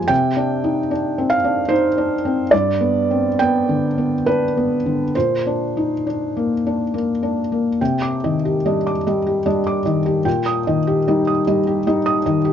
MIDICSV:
0, 0, Header, 1, 2, 480
1, 0, Start_track
1, 0, Key_signature, -3, "minor"
1, 0, Tempo, 805369
1, 61, Time_signature, 3, 2, 24, 8
1, 1501, Tempo, 881057
1, 3901, Tempo, 855920
1, 4861, Tempo, 803213
1, 7188, End_track
2, 0, Start_track
2, 0, Title_t, "Felt piano"
2, 0, Program_c, 0, 0
2, 0, Control_c, 0, 64, 127
2, 0, Note_on_c, 0, 53, 42
2, 0, Note_on_c, 0, 56, 46
2, 0, Note_on_c, 0, 58, 36
2, 0, Note_on_c, 0, 67, 43
2, 0, Note_on_c, 0, 80, 82
2, 45, Note_on_c, 0, 79, 85
2, 54, Note_on_c, 0, 48, 55
2, 71, Control_c, 0, 64, 0
2, 73, Note_off_c, 0, 53, 0
2, 73, Note_off_c, 0, 58, 0
2, 73, Note_off_c, 0, 67, 0
2, 73, Note_off_c, 0, 80, 0
2, 75, Note_off_c, 0, 56, 0
2, 174, Control_c, 0, 64, 127
2, 218, Note_on_c, 0, 62, 43
2, 381, Note_on_c, 0, 63, 38
2, 473, Note_off_c, 0, 62, 0
2, 539, Note_off_c, 0, 63, 0
2, 542, Note_on_c, 0, 62, 45
2, 705, Note_on_c, 0, 60, 39
2, 771, Note_off_c, 0, 79, 0
2, 773, Note_on_c, 0, 77, 78
2, 797, Note_off_c, 0, 62, 0
2, 861, Note_on_c, 0, 62, 44
2, 958, Note_off_c, 0, 60, 0
2, 1005, Note_on_c, 0, 72, 77
2, 1012, Note_on_c, 0, 63, 47
2, 1016, Note_off_c, 0, 77, 0
2, 1115, Note_off_c, 0, 62, 0
2, 1178, Note_on_c, 0, 62, 43
2, 1270, Note_off_c, 0, 63, 0
2, 1341, Note_on_c, 0, 60, 41
2, 1436, Note_off_c, 0, 62, 0
2, 1474, Note_off_c, 0, 48, 0
2, 1494, Note_off_c, 0, 72, 0
2, 1497, Note_on_c, 0, 74, 80
2, 1503, Note_off_c, 0, 60, 0
2, 1503, Note_on_c, 0, 43, 57
2, 1510, Control_c, 0, 64, 0
2, 1594, Control_c, 0, 64, 127
2, 1658, Note_on_c, 0, 59, 42
2, 1822, Note_on_c, 0, 60, 35
2, 1915, Note_off_c, 0, 59, 0
2, 1976, Note_off_c, 0, 74, 0
2, 1977, Note_on_c, 0, 79, 82
2, 1980, Note_off_c, 0, 60, 0
2, 1987, Note_on_c, 0, 59, 43
2, 2139, Note_on_c, 0, 50, 38
2, 2234, Note_off_c, 0, 59, 0
2, 2297, Note_on_c, 0, 59, 40
2, 2388, Note_off_c, 0, 50, 0
2, 2448, Note_off_c, 0, 79, 0
2, 2452, Note_on_c, 0, 71, 72
2, 2462, Note_on_c, 0, 62, 44
2, 2547, Note_off_c, 0, 59, 0
2, 2620, Note_on_c, 0, 59, 37
2, 2710, Note_off_c, 0, 62, 0
2, 2777, Note_on_c, 0, 50, 37
2, 2872, Note_off_c, 0, 59, 0
2, 2911, Note_off_c, 0, 43, 0
2, 2933, Note_off_c, 0, 71, 0
2, 2936, Note_off_c, 0, 50, 0
2, 2936, Note_on_c, 0, 72, 65
2, 2942, Control_c, 0, 64, 0
2, 2944, Note_on_c, 0, 46, 48
2, 3036, Control_c, 0, 64, 127
2, 3107, Note_on_c, 0, 62, 36
2, 3272, Note_on_c, 0, 63, 32
2, 3363, Note_off_c, 0, 62, 0
2, 3428, Note_off_c, 0, 63, 0
2, 3434, Note_on_c, 0, 62, 38
2, 3597, Note_on_c, 0, 58, 35
2, 3686, Note_off_c, 0, 62, 0
2, 3760, Note_on_c, 0, 62, 39
2, 3846, Note_off_c, 0, 58, 0
2, 3905, Note_off_c, 0, 72, 0
2, 3910, Note_on_c, 0, 58, 40
2, 4009, Note_off_c, 0, 62, 0
2, 4071, Note_on_c, 0, 62, 38
2, 4169, Note_off_c, 0, 58, 0
2, 4235, Note_on_c, 0, 58, 33
2, 4331, Note_off_c, 0, 62, 0
2, 4376, Note_off_c, 0, 46, 0
2, 4394, Note_off_c, 0, 58, 0
2, 4400, Note_on_c, 0, 48, 45
2, 4400, Note_on_c, 0, 79, 43
2, 4402, Control_c, 0, 64, 0
2, 4484, Control_c, 0, 64, 127
2, 4516, Note_on_c, 0, 86, 38
2, 4585, Note_off_c, 0, 79, 0
2, 4639, Note_on_c, 0, 51, 31
2, 4639, Note_on_c, 0, 75, 38
2, 4701, Note_off_c, 0, 86, 0
2, 4758, Note_on_c, 0, 67, 36
2, 4821, Note_off_c, 0, 75, 0
2, 4872, Note_on_c, 0, 55, 33
2, 4873, Note_on_c, 0, 75, 40
2, 4878, Note_on_c, 0, 62, 36
2, 4943, Note_off_c, 0, 67, 0
2, 4999, Note_on_c, 0, 86, 40
2, 5016, Note_off_c, 0, 51, 0
2, 5065, Note_off_c, 0, 75, 0
2, 5090, Note_off_c, 0, 55, 0
2, 5093, Note_off_c, 0, 62, 0
2, 5119, Note_on_c, 0, 75, 39
2, 5121, Note_on_c, 0, 55, 38
2, 5189, Note_off_c, 0, 86, 0
2, 5238, Note_on_c, 0, 67, 37
2, 5308, Note_off_c, 0, 75, 0
2, 5344, Note_off_c, 0, 55, 0
2, 5352, Note_on_c, 0, 75, 45
2, 5353, Note_on_c, 0, 55, 40
2, 5353, Note_on_c, 0, 62, 42
2, 5427, Note_off_c, 0, 67, 0
2, 5477, Note_on_c, 0, 86, 46
2, 5543, Note_off_c, 0, 75, 0
2, 5567, Note_off_c, 0, 55, 0
2, 5567, Note_off_c, 0, 62, 0
2, 5591, Note_on_c, 0, 51, 37
2, 5591, Note_on_c, 0, 75, 41
2, 5665, Note_off_c, 0, 86, 0
2, 5711, Note_on_c, 0, 67, 44
2, 5782, Note_off_c, 0, 75, 0
2, 5811, Note_off_c, 0, 48, 0
2, 5827, Note_on_c, 0, 46, 52
2, 5827, Note_on_c, 0, 79, 48
2, 5830, Note_off_c, 0, 51, 0
2, 5831, Note_off_c, 0, 67, 0
2, 5841, Control_c, 0, 64, 0
2, 5921, Control_c, 0, 64, 127
2, 5952, Note_on_c, 0, 87, 45
2, 6023, Note_off_c, 0, 79, 0
2, 6078, Note_on_c, 0, 51, 46
2, 6078, Note_on_c, 0, 75, 47
2, 6145, Note_off_c, 0, 87, 0
2, 6198, Note_on_c, 0, 67, 48
2, 6269, Note_off_c, 0, 75, 0
2, 6320, Note_on_c, 0, 75, 48
2, 6322, Note_on_c, 0, 55, 44
2, 6324, Note_on_c, 0, 63, 47
2, 6388, Note_off_c, 0, 67, 0
2, 6437, Note_on_c, 0, 87, 48
2, 6461, Note_off_c, 0, 51, 0
2, 6509, Note_off_c, 0, 75, 0
2, 6535, Note_off_c, 0, 55, 0
2, 6536, Note_off_c, 0, 63, 0
2, 6557, Note_on_c, 0, 55, 47
2, 6557, Note_on_c, 0, 75, 52
2, 6628, Note_off_c, 0, 87, 0
2, 6675, Note_on_c, 0, 67, 49
2, 6747, Note_off_c, 0, 75, 0
2, 6784, Note_off_c, 0, 55, 0
2, 6793, Note_on_c, 0, 55, 45
2, 6794, Note_on_c, 0, 63, 52
2, 6794, Note_on_c, 0, 75, 53
2, 6864, Note_off_c, 0, 67, 0
2, 6907, Note_on_c, 0, 87, 53
2, 6981, Note_off_c, 0, 75, 0
2, 7003, Note_off_c, 0, 55, 0
2, 7004, Note_off_c, 0, 63, 0
2, 7025, Note_on_c, 0, 51, 46
2, 7027, Note_on_c, 0, 75, 49
2, 7094, Note_off_c, 0, 87, 0
2, 7138, Note_on_c, 0, 67, 49
2, 7188, Note_off_c, 0, 46, 0
2, 7188, Note_off_c, 0, 51, 0
2, 7188, Note_off_c, 0, 67, 0
2, 7188, Note_off_c, 0, 75, 0
2, 7188, End_track
0, 0, End_of_file